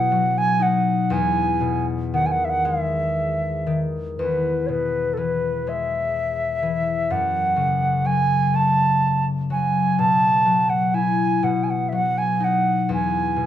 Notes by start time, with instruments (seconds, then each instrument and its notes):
Already playing: harp B2 A3 E4, flute F#5
0.12 harp F#3
0.38 flute G#5
0.60 harp D#4, flute F#5
1.10 harp E2, flute G#5
1.61 harp B2
2.14 harp D#3, flute F#5
2.26 flute G#5
2.31 flute F#5
2.45 flute E5
2.50 flute F#5
2.65 harp G#3, flute E5
3.66 harp D#3
4.18 harp E2, flute B4
4.66 harp B2, flute B4 C#5
5.13 harp E3, flute A4
5.18 flute B4
5.67 harp G#3, flute E5
6.63 harp E3
7.10 harp F#2, flute F#5
7.56 harp C#3
8.05 harp F#3, flute G#5
8.54 harp A3, flute A5
9.50 harp F#3, flute G#5
9.99 harp B2, flute A5
10.46 harp F#3
10.69 flute F#5
10.94 harp E4, flute G#5
11.43 harp B2, flute F#5
11.64 flute G#5
11.70 flute F#5
11.89 harp F#3, flute E5
11.95 flute F#5
12.18 flute G#5
12.40 harp D#4, flute F#5
12.89 harp E2
12.94 flute G#5
13.36 harp B2